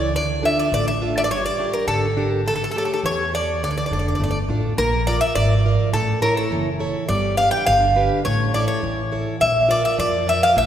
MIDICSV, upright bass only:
0, 0, Header, 1, 2, 480
1, 0, Start_track
1, 0, Tempo, 580271
1, 114, Time_signature, 2, 2, 24, 8
1, 8820, End_track
2, 0, Start_track
2, 0, Title_t, "Upright bass"
2, 0, Program_c, 0, 32
2, 0, Note_on_c, 0, 37, 80
2, 118, Note_off_c, 0, 37, 0
2, 118, Note_on_c, 0, 38, 94
2, 284, Note_off_c, 0, 38, 0
2, 595, Note_on_c, 0, 33, 80
2, 1074, Note_off_c, 0, 33, 0
2, 1074, Note_on_c, 0, 31, 97
2, 1241, Note_off_c, 0, 31, 0
2, 1549, Note_on_c, 0, 32, 77
2, 2028, Note_off_c, 0, 32, 0
2, 2028, Note_on_c, 0, 33, 102
2, 2197, Note_off_c, 0, 33, 0
2, 2511, Note_on_c, 0, 40, 84
2, 2991, Note_off_c, 0, 40, 0
2, 2991, Note_on_c, 0, 38, 92
2, 3159, Note_off_c, 0, 38, 0
2, 3234, Note_on_c, 0, 29, 72
2, 3449, Note_off_c, 0, 29, 0
2, 3473, Note_on_c, 0, 31, 79
2, 3688, Note_off_c, 0, 31, 0
2, 3709, Note_on_c, 0, 33, 80
2, 3925, Note_off_c, 0, 33, 0
2, 3949, Note_on_c, 0, 34, 85
2, 4285, Note_off_c, 0, 34, 0
2, 4429, Note_on_c, 0, 32, 87
2, 4766, Note_off_c, 0, 32, 0
2, 4906, Note_on_c, 0, 33, 96
2, 5243, Note_off_c, 0, 33, 0
2, 5383, Note_on_c, 0, 30, 81
2, 5721, Note_off_c, 0, 30, 0
2, 5865, Note_on_c, 0, 31, 89
2, 6203, Note_off_c, 0, 31, 0
2, 6348, Note_on_c, 0, 31, 86
2, 6685, Note_off_c, 0, 31, 0
2, 6828, Note_on_c, 0, 33, 94
2, 7165, Note_off_c, 0, 33, 0
2, 7305, Note_on_c, 0, 33, 81
2, 7643, Note_off_c, 0, 33, 0
2, 7785, Note_on_c, 0, 34, 91
2, 8123, Note_off_c, 0, 34, 0
2, 8259, Note_on_c, 0, 41, 84
2, 8600, Note_off_c, 0, 41, 0
2, 8736, Note_on_c, 0, 33, 91
2, 8820, Note_off_c, 0, 33, 0
2, 8820, End_track
0, 0, End_of_file